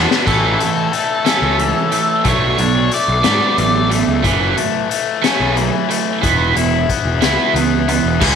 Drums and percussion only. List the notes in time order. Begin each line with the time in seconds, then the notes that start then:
0.11 snare
0.27 kick, crash
0.60 closed hi-hat
0.93 closed hi-hat
1.26 snare, closed hi-hat
1.59 closed hi-hat
1.92 closed hi-hat
2.25 kick, closed hi-hat
2.58 closed hi-hat
2.91 closed hi-hat
3.24 snare, closed hi-hat
3.58 closed hi-hat
3.91 closed hi-hat
4.24 kick, closed hi-hat
4.57 closed hi-hat
4.91 closed hi-hat
5.24 snare, closed hi-hat
5.57 closed hi-hat
5.90 closed hi-hat
6.23 kick, closed hi-hat
6.56 closed hi-hat
6.89 kick, closed hi-hat
7.22 snare, closed hi-hat
7.56 closed hi-hat
7.89 closed hi-hat
8.21 kick, crash